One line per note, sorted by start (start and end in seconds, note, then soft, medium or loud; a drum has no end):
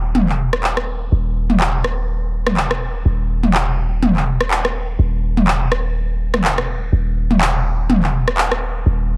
0.00 1.10 D#1 medium
0.15 mid tom medium
0.29 clap soft
0.53 cross-stick medium
0.64 clap medium
0.77 cross-stick medium
1.12 3.03 D#1 medium
1.50 mid tom medium
1.60 clap medium
1.84 cross-stick medium
2.47 cross-stick medium
2.47 mid tom medium
2.57 clap medium
2.71 cross-stick medium
3.05 4.97 D#1 medium
3.43 mid tom medium
3.54 clap medium
4.03 mid tom medium
4.17 clap soft
4.41 cross-stick medium
4.51 clap medium
4.65 cross-stick medium
4.99 6.90 D#1 medium
5.37 mid tom medium
5.48 clap medium
5.72 cross-stick medium
6.34 cross-stick medium
6.34 mid tom medium
6.44 clap loud
6.58 cross-stick medium
6.93 8.84 D#1 medium
7.31 mid tom medium
7.41 clap loud
7.90 mid tom loud
8.03 clap soft
8.28 cross-stick medium
8.38 clap loud
8.52 cross-stick medium
8.86 9.17 D#1 medium